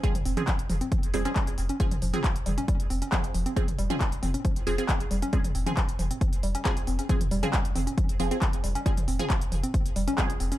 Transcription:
<<
  \new Staff \with { instrumentName = "Synth stab" } { \time 4/4 \key f \minor \tempo 4 = 136 <f c' aes'>16 r8 <f c' aes'>16 r4. <f c' aes'>16 <f c' aes'>16 r4 | <f c' aes'>16 r8 <f c' aes'>16 r2 <f c' aes'>4 | <f c' aes'>16 r8 <f c' aes'>16 r4. <f c' aes'>16 <f c' aes'>16 r4 | <f c' aes'>16 r8 <f c' aes'>16 r2 <f c' aes'>4 |
<f c' aes'>16 r8 <f c' aes'>16 r4. <f c' aes'>16 <f c' aes'>16 r4 | <f c' aes'>16 r8 <f c' aes'>16 r2 <f c' aes'>4 | }
  \new Staff \with { instrumentName = "Synth arpeggio sound" } { \clef bass \time 4/4 \key f \minor g16 r16 c'16 des'16 f16 r16 f16 c'16 f16 r16 g16 des'16 g16 r16 c'16 des'16 | f16 r16 f16 c'16 f16 r16 g16 des'16 g16 r16 c'16 des'16 f16 r16 f16 c'16 | f16 r16 g16 des'16 g16 r16 c'16 des'16 f16 r16 f16 c'16 f16 r16 g16 des'16 | g16 r16 c'16 des'16 f16 r16 f16 c'16 f16 r16 g16 des'16 g16 r16 c'16 des'16 |
f16 r16 g16 des'16 g16 r16 c'16 des'16 f16 r16 f16 c'16 f16 r16 g16 des'16 | g16 r16 c'16 des'16 f16 r16 f16 c'16 f16 r16 g16 des'16 g16 r16 c'16 des'16 | }
  \new Staff \with { instrumentName = "Sub bass" } { \clef bass \time 4/4 \key f \minor r16 f,,16 f,,16 r8 f,,16 f,,16 r8 f,,16 f,,16 r8 f,,16 f,,16 r16 | r16 f,,16 f,,16 r8 f,,16 f,,16 r8 f,,16 f,,16 r8 f,,16 f,,16 r16 | r16 f,,16 f,,16 r8 f,,16 f,,16 r8 f,,16 f,,16 r8 f,,16 f,,16 r16 | r16 f,,16 f,,16 r8 f,,16 f,,16 r8 f,,16 f,,16 r8 f,,16 f,,16 r16 |
r16 f,,16 f,,16 r8 f,,16 f,,16 r8 f,,16 f,,16 r8 f,,16 f,,16 r16 | r16 f,,16 f,,16 r8 f,,16 f,,16 r8 f,,16 f,,16 r8 f,,16 f,,16 r16 | }
  \new DrumStaff \with { instrumentName = "Drums" } \drummode { \time 4/4 <hh bd>16 <hh toml>16 hho16 <hh toml>16 <hc hh bd>16 hh16 <hho toml>16 hh16 <hh bd>16 hh16 hho16 hh16 <hc hh bd>16 hh16 hho16 hh16 | <hh bd>16 <hh toml>16 hho16 <hh toml>16 <hc hh bd>16 hh16 <hho toml>16 hh16 <hh bd>16 hh16 hho16 hh16 <hc hh bd>16 hh16 hho16 hh16 | <hh bd>16 <hh toml>16 hho16 <hh toml>16 <hc hh bd>16 hh16 <hho toml>16 hh16 <hh bd>16 hh16 hho16 hh16 <hc hh bd>16 hh16 hho16 hh16 | <hh bd>16 <hh toml>16 hho16 <hh toml>16 <hc hh bd>16 hh16 <hho toml>16 hh16 <hh bd>16 hh16 hho16 hh16 <hc hh bd>16 hh16 hho16 hh16 |
<hh bd>16 <hh toml>16 hho16 <hh toml>16 <hc hh bd>16 hh16 <hho toml>16 hh16 <hh bd>16 hh16 hho16 hh16 <hc hh bd>16 hh16 hho16 hh16 | <hh bd>16 <hh toml>16 hho16 <hh toml>16 <hc hh bd>16 hh16 <hho toml>16 hh16 <hh bd>16 hh16 hho16 hh16 <hc hh bd>16 hh16 hho16 hh16 | }
>>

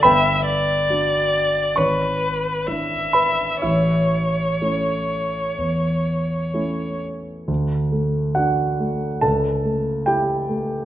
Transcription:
<<
  \new Staff \with { instrumentName = "Violin" } { \time 4/4 \key d \major \tempo 4 = 67 e''8 d''4. b'4 e''4 | cis''2.~ cis''8 r8 | r1 | }
  \new Staff \with { instrumentName = "Grand piano" } { \time 4/4 \key d \major <b' g'' b''>2 <cis'' cis'''>4. <b' b''>8 | <e' cis'' e''>2.~ <e' cis'' e''>8 r8 | r4 <fis' fis''>4 <a' a''>4 <g' g''>4 | }
  \new Staff \with { instrumentName = "Grand piano" } { \time 4/4 \key d \major g,,4 <d' fis'>4 gis,,4 <d' e'>4 | a,,4 <a cis' e'>4 e,4 <a cis' e'>4 | d,8 a8 d'8 a8 cis,8 a8 e'8 a8 | }
>>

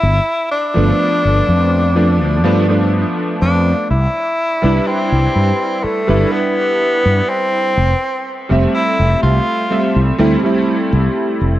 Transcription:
<<
  \new Staff \with { instrumentName = "Tenor saxophone" } { \time 4/4 \key c \major \tempo 4 = 62 e'8 d'2~ d'8 r8 d'8 | e'4 c'4 a8 b4 c'8~ | c'8 r8 e'8 f'4 r4. | }
  \new Staff \with { instrumentName = "Electric grand piano" } { \time 4/4 \key c \major r8. <f a b d'>4~ <f a b d'>16 <f a b d'>8 <f a b d'>16 <f a b d'>4~ <f a b d'>16 | r8. <g d' e' b'>4. <g d' e' b'>4.~ <g d' e' b'>16 | r8. <g a c' e''>4~ <g a c' e''>16 <g a c' e''>8 <g a c' e'>16 <g a c' e'>4~ <g a c' e'>16 | }
  \new Staff \with { instrumentName = "Fretless electric bass" } { \clef bass \time 4/4 \key c \major g,,16 r8 g,,16 r16 g,,16 f,8. d,16 g,8 r8 f,16 r16 | c,16 r8 c,16 r16 c,16 g,16 r8 g,,16 r8. g,16 r8 | f,,16 r8 f,,16 r16 f,,16 c,16 r8 c,16 d,16 r8 c,16 r16 f,,16 | }
>>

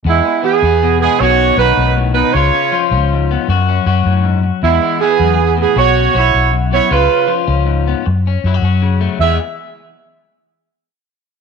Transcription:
<<
  \new Staff \with { instrumentName = "Horn section" } { \time 12/8 \key e \major \tempo 4. = 105 <gis e'>4 <b gis'>4. <b gis'>8 <fis' cis''>4 <dis' b'>4 r8 <dis' b'>8 | <eis' cis''>4 r1 r4 | <gis e'>4 <b gis'>4. <b gis'>8 <fis' cis''>4 <e' cis''>4 r8 <e' cis''>8 | <eis' b'>4 r1 r4 |
e''8 r1 r4. | }
  \new Staff \with { instrumentName = "Clean electric guitar" } { \time 12/8 \key e \major << { b8 b8 b8 b4 gis8 <dis b cis' fis'>8 cis'8 fis'2 | eis'8 cis'8 eis'8 cis'4 b8 fis'8 cis'8 fis'2 | b8 b8 b2 fis'8 cis'8 fis'4. b8 | eis'8 cis'8 eis'8 cis'4 b8 r8 cis'8 e'16 fis'16 cis'4 a8 |
<e gis b gis'>8 r1 r4. | } \\ { r4 e4 b,4 b,4 dis8 gis,8 a,8 b,8 | cis4 eis4 gis,4 fis,4 fis8 a,8 gis,8 r8 | e,4 e8 fis,8 r8 a,8 b,4 r4 fis,4 | cis4 eis4 gis,4 r4 fis4 cis4 |
e,8 r1 r4. | } >> }
  \new Staff \with { instrumentName = "Fingered electric bass" } { \clef bass \time 12/8 \key e \major e,8 r4 e,4. b,,4 b,,8 b,,4. | cis,8 r4 cis,4. fis,4 fis,8 fis,4. | e,8 r4 e,4. b,,4 b,,8 b,,4. | cis,8 r4 cis,4. fis,4 fis,8 fis,4. |
e,8 r1 r4. | }
>>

